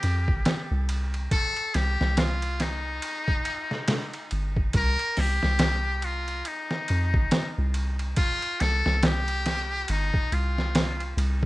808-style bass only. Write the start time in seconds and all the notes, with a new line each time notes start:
0.04 F2
0.28 G1
0.71 C2
1.75 C2
2.01 C2
4.32 G1
4.74 C2
5.18 C2
5.44 C2
6.90 F2
7.14 G1
7.58 C2
8.61 C2
8.86 C2
9.89 G1
10.32 C2
11.17 C2